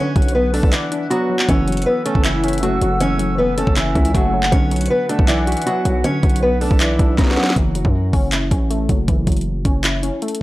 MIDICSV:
0, 0, Header, 1, 6, 480
1, 0, Start_track
1, 0, Tempo, 379747
1, 1878, Time_signature, 4, 2, 24, 8
1, 13175, End_track
2, 0, Start_track
2, 0, Title_t, "Woodwind section"
2, 0, Program_c, 0, 71
2, 0, Note_on_c, 0, 71, 84
2, 0, Note_on_c, 0, 78, 75
2, 1841, Note_off_c, 0, 71, 0
2, 1879, Note_on_c, 0, 69, 83
2, 1879, Note_on_c, 0, 88, 88
2, 5502, Note_off_c, 0, 69, 0
2, 5502, Note_off_c, 0, 78, 0
2, 5502, Note_off_c, 0, 88, 0
2, 5717, Note_on_c, 0, 78, 77
2, 5718, Note_on_c, 0, 71, 81
2, 9519, Note_off_c, 0, 78, 0
2, 9520, Note_off_c, 0, 71, 0
2, 13175, End_track
3, 0, Start_track
3, 0, Title_t, "Steel-string acoustic guitar"
3, 0, Program_c, 1, 25
3, 0, Note_on_c, 1, 61, 80
3, 0, Note_on_c, 1, 73, 114
3, 410, Note_off_c, 1, 73, 0
3, 415, Note_off_c, 1, 61, 0
3, 440, Note_on_c, 1, 71, 78
3, 449, Note_on_c, 1, 59, 67
3, 640, Note_off_c, 1, 71, 0
3, 645, Note_off_c, 1, 59, 0
3, 680, Note_on_c, 1, 69, 92
3, 690, Note_on_c, 1, 57, 66
3, 880, Note_off_c, 1, 69, 0
3, 885, Note_off_c, 1, 57, 0
3, 917, Note_on_c, 1, 64, 76
3, 927, Note_on_c, 1, 52, 60
3, 1369, Note_off_c, 1, 64, 0
3, 1374, Note_off_c, 1, 52, 0
3, 1395, Note_on_c, 1, 66, 88
3, 1405, Note_on_c, 1, 54, 71
3, 1848, Note_off_c, 1, 66, 0
3, 1853, Note_off_c, 1, 54, 0
3, 1878, Note_on_c, 1, 73, 105
3, 1889, Note_on_c, 1, 61, 84
3, 2330, Note_off_c, 1, 73, 0
3, 2335, Note_off_c, 1, 61, 0
3, 2351, Note_on_c, 1, 71, 83
3, 2362, Note_on_c, 1, 59, 64
3, 2555, Note_off_c, 1, 71, 0
3, 2561, Note_off_c, 1, 59, 0
3, 2596, Note_on_c, 1, 69, 81
3, 2606, Note_on_c, 1, 57, 71
3, 2798, Note_off_c, 1, 69, 0
3, 2803, Note_off_c, 1, 57, 0
3, 2847, Note_on_c, 1, 64, 81
3, 2858, Note_on_c, 1, 52, 64
3, 3294, Note_off_c, 1, 64, 0
3, 3300, Note_off_c, 1, 52, 0
3, 3321, Note_on_c, 1, 66, 78
3, 3331, Note_on_c, 1, 54, 60
3, 3771, Note_off_c, 1, 66, 0
3, 3776, Note_off_c, 1, 54, 0
3, 3800, Note_on_c, 1, 73, 104
3, 3810, Note_on_c, 1, 61, 89
3, 4250, Note_off_c, 1, 73, 0
3, 4256, Note_off_c, 1, 61, 0
3, 4274, Note_on_c, 1, 71, 77
3, 4284, Note_on_c, 1, 59, 64
3, 4477, Note_off_c, 1, 71, 0
3, 4483, Note_off_c, 1, 59, 0
3, 4521, Note_on_c, 1, 69, 96
3, 4531, Note_on_c, 1, 57, 71
3, 4720, Note_off_c, 1, 69, 0
3, 4726, Note_off_c, 1, 57, 0
3, 4754, Note_on_c, 1, 64, 79
3, 4764, Note_on_c, 1, 52, 68
3, 5208, Note_off_c, 1, 64, 0
3, 5213, Note_off_c, 1, 52, 0
3, 5241, Note_on_c, 1, 66, 88
3, 5251, Note_on_c, 1, 54, 70
3, 5691, Note_off_c, 1, 66, 0
3, 5696, Note_off_c, 1, 54, 0
3, 5711, Note_on_c, 1, 73, 119
3, 5721, Note_on_c, 1, 61, 82
3, 6166, Note_off_c, 1, 73, 0
3, 6171, Note_off_c, 1, 61, 0
3, 6199, Note_on_c, 1, 71, 82
3, 6209, Note_on_c, 1, 59, 70
3, 6399, Note_off_c, 1, 71, 0
3, 6405, Note_off_c, 1, 59, 0
3, 6434, Note_on_c, 1, 69, 88
3, 6444, Note_on_c, 1, 57, 67
3, 6636, Note_off_c, 1, 69, 0
3, 6642, Note_off_c, 1, 57, 0
3, 6671, Note_on_c, 1, 64, 78
3, 6682, Note_on_c, 1, 52, 67
3, 7126, Note_off_c, 1, 64, 0
3, 7132, Note_off_c, 1, 52, 0
3, 7160, Note_on_c, 1, 66, 99
3, 7171, Note_on_c, 1, 54, 73
3, 7611, Note_off_c, 1, 66, 0
3, 7616, Note_off_c, 1, 54, 0
3, 7639, Note_on_c, 1, 73, 115
3, 7650, Note_on_c, 1, 61, 81
3, 8090, Note_off_c, 1, 73, 0
3, 8096, Note_off_c, 1, 61, 0
3, 8121, Note_on_c, 1, 71, 78
3, 8131, Note_on_c, 1, 59, 68
3, 8321, Note_off_c, 1, 71, 0
3, 8327, Note_off_c, 1, 59, 0
3, 8361, Note_on_c, 1, 69, 95
3, 8371, Note_on_c, 1, 57, 67
3, 8560, Note_off_c, 1, 69, 0
3, 8566, Note_off_c, 1, 57, 0
3, 8598, Note_on_c, 1, 64, 79
3, 8608, Note_on_c, 1, 52, 58
3, 9050, Note_off_c, 1, 64, 0
3, 9055, Note_off_c, 1, 52, 0
3, 9076, Note_on_c, 1, 66, 85
3, 9087, Note_on_c, 1, 54, 72
3, 9529, Note_off_c, 1, 66, 0
3, 9534, Note_off_c, 1, 54, 0
3, 13175, End_track
4, 0, Start_track
4, 0, Title_t, "Synth pluck"
4, 0, Program_c, 2, 84
4, 0, Note_on_c, 2, 50, 88
4, 0, Note_on_c, 2, 54, 82
4, 0, Note_on_c, 2, 59, 90
4, 0, Note_on_c, 2, 66, 83
4, 0, Note_on_c, 2, 74, 84
4, 186, Note_off_c, 2, 54, 0
4, 199, Note_off_c, 2, 74, 0
4, 201, Note_on_c, 2, 54, 76
4, 437, Note_off_c, 2, 66, 0
4, 678, Note_off_c, 2, 59, 0
4, 678, Note_on_c, 2, 62, 99
4, 920, Note_on_c, 2, 74, 91
4, 1144, Note_off_c, 2, 62, 0
4, 1159, Note_on_c, 2, 62, 78
4, 1160, Note_off_c, 2, 50, 0
4, 1398, Note_on_c, 2, 59, 104
4, 1400, Note_off_c, 2, 54, 0
4, 1639, Note_on_c, 2, 54, 81
4, 1878, Note_off_c, 2, 59, 0
4, 1879, Note_off_c, 2, 54, 0
4, 1879, Note_off_c, 2, 62, 0
4, 1880, Note_off_c, 2, 74, 0
4, 1882, Note_on_c, 2, 52, 93
4, 2121, Note_on_c, 2, 54, 75
4, 2601, Note_on_c, 2, 61, 101
4, 2838, Note_on_c, 2, 64, 91
4, 3066, Note_off_c, 2, 61, 0
4, 3080, Note_off_c, 2, 52, 0
4, 3081, Note_on_c, 2, 61, 83
4, 3320, Note_off_c, 2, 54, 0
4, 3320, Note_on_c, 2, 57, 101
4, 3557, Note_on_c, 2, 54, 83
4, 3798, Note_on_c, 2, 52, 91
4, 4018, Note_off_c, 2, 54, 0
4, 4033, Note_on_c, 2, 54, 75
4, 4038, Note_off_c, 2, 64, 0
4, 4280, Note_off_c, 2, 61, 0
4, 4519, Note_off_c, 2, 57, 0
4, 4519, Note_on_c, 2, 61, 90
4, 4759, Note_on_c, 2, 64, 83
4, 4980, Note_off_c, 2, 61, 0
4, 4995, Note_on_c, 2, 61, 81
4, 4999, Note_off_c, 2, 52, 0
4, 5236, Note_off_c, 2, 54, 0
4, 5239, Note_on_c, 2, 57, 98
4, 5479, Note_on_c, 2, 54, 81
4, 5716, Note_on_c, 2, 50, 93
4, 5717, Note_off_c, 2, 61, 0
4, 5719, Note_off_c, 2, 54, 0
4, 5719, Note_off_c, 2, 57, 0
4, 5719, Note_off_c, 2, 64, 0
4, 5957, Note_on_c, 2, 54, 82
4, 6439, Note_on_c, 2, 62, 94
4, 6679, Note_on_c, 2, 74, 86
4, 6916, Note_on_c, 2, 66, 89
4, 6917, Note_off_c, 2, 50, 0
4, 7157, Note_on_c, 2, 59, 93
4, 7158, Note_off_c, 2, 54, 0
4, 7396, Note_on_c, 2, 54, 77
4, 7639, Note_off_c, 2, 62, 0
4, 7640, Note_on_c, 2, 50, 87
4, 7866, Note_off_c, 2, 54, 0
4, 7879, Note_off_c, 2, 74, 0
4, 7881, Note_on_c, 2, 54, 73
4, 8117, Note_off_c, 2, 66, 0
4, 8357, Note_on_c, 2, 62, 97
4, 8358, Note_off_c, 2, 59, 0
4, 8599, Note_on_c, 2, 74, 90
4, 8822, Note_off_c, 2, 62, 0
4, 8837, Note_on_c, 2, 62, 79
4, 8839, Note_off_c, 2, 50, 0
4, 9077, Note_on_c, 2, 59, 105
4, 9080, Note_off_c, 2, 54, 0
4, 9317, Note_on_c, 2, 54, 80
4, 9558, Note_off_c, 2, 54, 0
4, 9558, Note_off_c, 2, 59, 0
4, 9558, Note_off_c, 2, 62, 0
4, 9559, Note_off_c, 2, 74, 0
4, 9561, Note_on_c, 2, 52, 92
4, 9801, Note_on_c, 2, 54, 71
4, 10279, Note_on_c, 2, 61, 100
4, 10517, Note_on_c, 2, 64, 92
4, 10745, Note_off_c, 2, 61, 0
4, 10760, Note_off_c, 2, 52, 0
4, 10761, Note_on_c, 2, 61, 79
4, 11000, Note_off_c, 2, 54, 0
4, 11000, Note_on_c, 2, 57, 98
4, 11237, Note_on_c, 2, 54, 79
4, 11479, Note_on_c, 2, 52, 89
4, 11698, Note_off_c, 2, 54, 0
4, 11713, Note_on_c, 2, 54, 74
4, 11718, Note_off_c, 2, 64, 0
4, 11960, Note_off_c, 2, 61, 0
4, 12199, Note_off_c, 2, 57, 0
4, 12200, Note_on_c, 2, 61, 86
4, 12439, Note_on_c, 2, 64, 83
4, 12660, Note_off_c, 2, 61, 0
4, 12675, Note_on_c, 2, 61, 81
4, 12679, Note_off_c, 2, 52, 0
4, 12916, Note_off_c, 2, 54, 0
4, 12921, Note_on_c, 2, 57, 95
4, 13175, Note_off_c, 2, 57, 0
4, 13175, Note_off_c, 2, 61, 0
4, 13175, Note_off_c, 2, 64, 0
4, 13175, End_track
5, 0, Start_track
5, 0, Title_t, "808-style bass"
5, 0, Program_c, 3, 38
5, 199, Note_on_c, 3, 35, 102
5, 775, Note_off_c, 3, 35, 0
5, 799, Note_on_c, 3, 35, 102
5, 914, Note_off_c, 3, 35, 0
5, 1879, Note_on_c, 3, 30, 115
5, 2340, Note_off_c, 3, 30, 0
5, 2719, Note_on_c, 3, 30, 102
5, 3525, Note_off_c, 3, 30, 0
5, 3559, Note_on_c, 3, 30, 105
5, 4596, Note_off_c, 3, 30, 0
5, 4639, Note_on_c, 3, 30, 105
5, 4984, Note_off_c, 3, 30, 0
5, 4999, Note_on_c, 3, 37, 107
5, 5229, Note_off_c, 3, 37, 0
5, 5240, Note_on_c, 3, 30, 105
5, 5700, Note_off_c, 3, 30, 0
5, 5718, Note_on_c, 3, 35, 116
5, 6179, Note_off_c, 3, 35, 0
5, 6559, Note_on_c, 3, 35, 107
5, 7019, Note_off_c, 3, 35, 0
5, 7398, Note_on_c, 3, 35, 104
5, 7629, Note_off_c, 3, 35, 0
5, 7878, Note_on_c, 3, 35, 102
5, 8454, Note_off_c, 3, 35, 0
5, 8478, Note_on_c, 3, 35, 103
5, 8824, Note_off_c, 3, 35, 0
5, 8839, Note_on_c, 3, 35, 106
5, 9069, Note_off_c, 3, 35, 0
5, 9079, Note_on_c, 3, 35, 110
5, 9309, Note_off_c, 3, 35, 0
5, 9559, Note_on_c, 3, 30, 116
5, 9904, Note_off_c, 3, 30, 0
5, 9919, Note_on_c, 3, 42, 97
5, 10265, Note_off_c, 3, 42, 0
5, 10279, Note_on_c, 3, 30, 110
5, 10740, Note_off_c, 3, 30, 0
5, 10758, Note_on_c, 3, 33, 101
5, 11219, Note_off_c, 3, 33, 0
5, 11238, Note_on_c, 3, 30, 105
5, 11469, Note_off_c, 3, 30, 0
5, 11479, Note_on_c, 3, 30, 112
5, 11709, Note_off_c, 3, 30, 0
5, 11719, Note_on_c, 3, 30, 102
5, 12180, Note_off_c, 3, 30, 0
5, 12199, Note_on_c, 3, 30, 108
5, 12775, Note_off_c, 3, 30, 0
5, 13175, End_track
6, 0, Start_track
6, 0, Title_t, "Drums"
6, 199, Note_on_c, 9, 36, 88
6, 199, Note_on_c, 9, 42, 45
6, 280, Note_off_c, 9, 42, 0
6, 280, Note_on_c, 9, 42, 59
6, 326, Note_off_c, 9, 36, 0
6, 360, Note_off_c, 9, 42, 0
6, 360, Note_on_c, 9, 42, 73
6, 486, Note_off_c, 9, 42, 0
6, 680, Note_on_c, 9, 46, 56
6, 799, Note_on_c, 9, 36, 98
6, 806, Note_off_c, 9, 46, 0
6, 918, Note_on_c, 9, 42, 96
6, 919, Note_on_c, 9, 39, 123
6, 926, Note_off_c, 9, 36, 0
6, 1044, Note_off_c, 9, 42, 0
6, 1046, Note_off_c, 9, 39, 0
6, 1161, Note_on_c, 9, 42, 77
6, 1288, Note_off_c, 9, 42, 0
6, 1404, Note_on_c, 9, 42, 81
6, 1531, Note_off_c, 9, 42, 0
6, 1760, Note_on_c, 9, 39, 91
6, 1879, Note_on_c, 9, 36, 110
6, 1879, Note_on_c, 9, 42, 92
6, 1887, Note_off_c, 9, 39, 0
6, 2006, Note_off_c, 9, 36, 0
6, 2006, Note_off_c, 9, 42, 0
6, 2119, Note_on_c, 9, 42, 60
6, 2179, Note_off_c, 9, 42, 0
6, 2179, Note_on_c, 9, 42, 60
6, 2239, Note_off_c, 9, 42, 0
6, 2239, Note_on_c, 9, 42, 57
6, 2299, Note_off_c, 9, 42, 0
6, 2299, Note_on_c, 9, 42, 58
6, 2425, Note_off_c, 9, 42, 0
6, 2599, Note_on_c, 9, 42, 82
6, 2719, Note_on_c, 9, 36, 102
6, 2726, Note_off_c, 9, 42, 0
6, 2837, Note_on_c, 9, 42, 93
6, 2838, Note_on_c, 9, 39, 118
6, 2845, Note_off_c, 9, 36, 0
6, 2963, Note_off_c, 9, 42, 0
6, 2965, Note_off_c, 9, 39, 0
6, 3079, Note_on_c, 9, 42, 66
6, 3138, Note_off_c, 9, 42, 0
6, 3138, Note_on_c, 9, 42, 67
6, 3199, Note_off_c, 9, 42, 0
6, 3199, Note_on_c, 9, 42, 64
6, 3259, Note_off_c, 9, 42, 0
6, 3259, Note_on_c, 9, 42, 65
6, 3323, Note_off_c, 9, 42, 0
6, 3323, Note_on_c, 9, 42, 80
6, 3449, Note_off_c, 9, 42, 0
6, 3559, Note_on_c, 9, 42, 81
6, 3685, Note_off_c, 9, 42, 0
6, 3798, Note_on_c, 9, 42, 90
6, 3925, Note_off_c, 9, 42, 0
6, 4037, Note_on_c, 9, 42, 74
6, 4163, Note_off_c, 9, 42, 0
6, 4520, Note_on_c, 9, 42, 78
6, 4639, Note_on_c, 9, 36, 100
6, 4646, Note_off_c, 9, 42, 0
6, 4757, Note_on_c, 9, 42, 93
6, 4758, Note_on_c, 9, 39, 121
6, 4765, Note_off_c, 9, 36, 0
6, 4883, Note_off_c, 9, 42, 0
6, 4884, Note_off_c, 9, 39, 0
6, 4998, Note_on_c, 9, 36, 91
6, 4998, Note_on_c, 9, 42, 48
6, 5118, Note_off_c, 9, 42, 0
6, 5118, Note_on_c, 9, 42, 79
6, 5125, Note_off_c, 9, 36, 0
6, 5240, Note_on_c, 9, 36, 103
6, 5243, Note_off_c, 9, 42, 0
6, 5243, Note_on_c, 9, 42, 83
6, 5366, Note_off_c, 9, 36, 0
6, 5370, Note_off_c, 9, 42, 0
6, 5600, Note_on_c, 9, 39, 89
6, 5718, Note_on_c, 9, 42, 93
6, 5719, Note_on_c, 9, 36, 109
6, 5726, Note_off_c, 9, 39, 0
6, 5844, Note_off_c, 9, 42, 0
6, 5845, Note_off_c, 9, 36, 0
6, 5958, Note_on_c, 9, 42, 62
6, 6019, Note_off_c, 9, 42, 0
6, 6019, Note_on_c, 9, 42, 62
6, 6078, Note_off_c, 9, 42, 0
6, 6078, Note_on_c, 9, 42, 59
6, 6139, Note_off_c, 9, 42, 0
6, 6139, Note_on_c, 9, 42, 59
6, 6265, Note_off_c, 9, 42, 0
6, 6439, Note_on_c, 9, 42, 81
6, 6559, Note_on_c, 9, 36, 100
6, 6566, Note_off_c, 9, 42, 0
6, 6677, Note_on_c, 9, 42, 92
6, 6678, Note_on_c, 9, 39, 121
6, 6685, Note_off_c, 9, 36, 0
6, 6803, Note_off_c, 9, 42, 0
6, 6804, Note_off_c, 9, 39, 0
6, 6918, Note_on_c, 9, 42, 67
6, 6978, Note_off_c, 9, 42, 0
6, 6978, Note_on_c, 9, 42, 67
6, 7038, Note_off_c, 9, 42, 0
6, 7038, Note_on_c, 9, 42, 64
6, 7099, Note_off_c, 9, 42, 0
6, 7099, Note_on_c, 9, 42, 66
6, 7163, Note_off_c, 9, 42, 0
6, 7163, Note_on_c, 9, 42, 81
6, 7290, Note_off_c, 9, 42, 0
6, 7398, Note_on_c, 9, 42, 82
6, 7525, Note_off_c, 9, 42, 0
6, 7638, Note_on_c, 9, 42, 92
6, 7764, Note_off_c, 9, 42, 0
6, 7878, Note_on_c, 9, 36, 92
6, 7878, Note_on_c, 9, 42, 43
6, 7958, Note_off_c, 9, 42, 0
6, 7958, Note_on_c, 9, 42, 59
6, 8005, Note_off_c, 9, 36, 0
6, 8037, Note_off_c, 9, 42, 0
6, 8037, Note_on_c, 9, 42, 74
6, 8164, Note_off_c, 9, 42, 0
6, 8358, Note_on_c, 9, 46, 55
6, 8478, Note_on_c, 9, 36, 100
6, 8485, Note_off_c, 9, 46, 0
6, 8596, Note_on_c, 9, 42, 95
6, 8597, Note_on_c, 9, 39, 121
6, 8605, Note_off_c, 9, 36, 0
6, 8722, Note_off_c, 9, 42, 0
6, 8724, Note_off_c, 9, 39, 0
6, 8838, Note_on_c, 9, 36, 87
6, 8840, Note_on_c, 9, 42, 78
6, 8965, Note_off_c, 9, 36, 0
6, 8967, Note_off_c, 9, 42, 0
6, 9078, Note_on_c, 9, 38, 63
6, 9080, Note_on_c, 9, 36, 100
6, 9083, Note_on_c, 9, 42, 79
6, 9158, Note_off_c, 9, 38, 0
6, 9158, Note_on_c, 9, 38, 61
6, 9206, Note_off_c, 9, 36, 0
6, 9210, Note_off_c, 9, 42, 0
6, 9238, Note_off_c, 9, 38, 0
6, 9238, Note_on_c, 9, 38, 85
6, 9319, Note_off_c, 9, 38, 0
6, 9319, Note_on_c, 9, 38, 82
6, 9398, Note_off_c, 9, 38, 0
6, 9398, Note_on_c, 9, 38, 109
6, 9479, Note_off_c, 9, 38, 0
6, 9479, Note_on_c, 9, 38, 96
6, 9559, Note_on_c, 9, 36, 105
6, 9559, Note_on_c, 9, 42, 93
6, 9605, Note_off_c, 9, 38, 0
6, 9685, Note_off_c, 9, 36, 0
6, 9685, Note_off_c, 9, 42, 0
6, 9796, Note_on_c, 9, 42, 70
6, 9919, Note_on_c, 9, 36, 91
6, 9923, Note_off_c, 9, 42, 0
6, 10045, Note_off_c, 9, 36, 0
6, 10279, Note_on_c, 9, 36, 106
6, 10279, Note_on_c, 9, 46, 56
6, 10405, Note_off_c, 9, 46, 0
6, 10406, Note_off_c, 9, 36, 0
6, 10516, Note_on_c, 9, 42, 91
6, 10518, Note_on_c, 9, 39, 114
6, 10643, Note_off_c, 9, 42, 0
6, 10644, Note_off_c, 9, 39, 0
6, 10758, Note_on_c, 9, 36, 86
6, 10760, Note_on_c, 9, 42, 77
6, 10885, Note_off_c, 9, 36, 0
6, 10886, Note_off_c, 9, 42, 0
6, 11003, Note_on_c, 9, 42, 76
6, 11129, Note_off_c, 9, 42, 0
6, 11238, Note_on_c, 9, 42, 79
6, 11239, Note_on_c, 9, 36, 96
6, 11364, Note_off_c, 9, 42, 0
6, 11365, Note_off_c, 9, 36, 0
6, 11478, Note_on_c, 9, 42, 88
6, 11479, Note_on_c, 9, 36, 110
6, 11605, Note_off_c, 9, 36, 0
6, 11605, Note_off_c, 9, 42, 0
6, 11718, Note_on_c, 9, 36, 87
6, 11718, Note_on_c, 9, 42, 70
6, 11778, Note_off_c, 9, 42, 0
6, 11778, Note_on_c, 9, 42, 61
6, 11838, Note_off_c, 9, 42, 0
6, 11838, Note_on_c, 9, 42, 52
6, 11845, Note_off_c, 9, 36, 0
6, 11898, Note_off_c, 9, 42, 0
6, 11898, Note_on_c, 9, 42, 42
6, 12024, Note_off_c, 9, 42, 0
6, 12199, Note_on_c, 9, 36, 101
6, 12199, Note_on_c, 9, 42, 75
6, 12325, Note_off_c, 9, 42, 0
6, 12326, Note_off_c, 9, 36, 0
6, 12436, Note_on_c, 9, 42, 92
6, 12438, Note_on_c, 9, 39, 118
6, 12563, Note_off_c, 9, 42, 0
6, 12564, Note_off_c, 9, 39, 0
6, 12680, Note_on_c, 9, 42, 76
6, 12807, Note_off_c, 9, 42, 0
6, 12919, Note_on_c, 9, 42, 49
6, 12998, Note_off_c, 9, 42, 0
6, 12998, Note_on_c, 9, 42, 63
6, 13078, Note_off_c, 9, 42, 0
6, 13078, Note_on_c, 9, 42, 82
6, 13175, Note_off_c, 9, 42, 0
6, 13175, End_track
0, 0, End_of_file